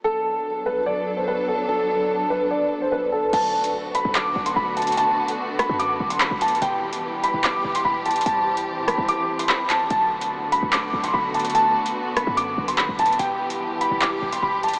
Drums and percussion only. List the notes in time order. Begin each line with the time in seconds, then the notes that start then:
3.33 closed hi-hat, crash
3.64 closed hi-hat
3.95 closed hi-hat
4.15 clap, closed hi-hat
4.46 closed hi-hat
4.77 closed hi-hat
4.82 closed hi-hat
4.87 closed hi-hat
4.92 closed hi-hat
4.97 closed hi-hat
5.28 closed hi-hat
5.59 cross-stick, closed hi-hat
5.80 closed hi-hat
6.10 closed hi-hat
6.21 clap
6.41 closed hi-hat, open hi-hat
6.48 closed hi-hat
6.55 closed hi-hat
6.62 closed hi-hat
6.93 closed hi-hat
7.23 closed hi-hat
7.44 clap, closed hi-hat
7.75 closed hi-hat
8.06 closed hi-hat
8.11 closed hi-hat
8.16 closed hi-hat
8.21 closed hi-hat
8.26 closed hi-hat
8.57 closed hi-hat
8.88 cross-stick, closed hi-hat
9.08 closed hi-hat
9.39 closed hi-hat
9.49 clap
9.70 clap, closed hi-hat
9.90 closed hi-hat
10.21 closed hi-hat
10.52 closed hi-hat
10.73 clap, closed hi-hat
11.04 closed hi-hat
11.34 closed hi-hat
11.40 closed hi-hat
11.45 closed hi-hat
11.50 closed hi-hat
11.55 closed hi-hat
11.86 closed hi-hat
12.17 cross-stick, closed hi-hat
12.37 closed hi-hat
12.68 closed hi-hat
12.78 clap
12.99 closed hi-hat, open hi-hat
13.06 closed hi-hat
13.12 closed hi-hat
13.19 closed hi-hat
13.50 closed hi-hat
13.81 closed hi-hat
14.02 clap, closed hi-hat
14.32 closed hi-hat
14.63 closed hi-hat
14.68 closed hi-hat
14.73 closed hi-hat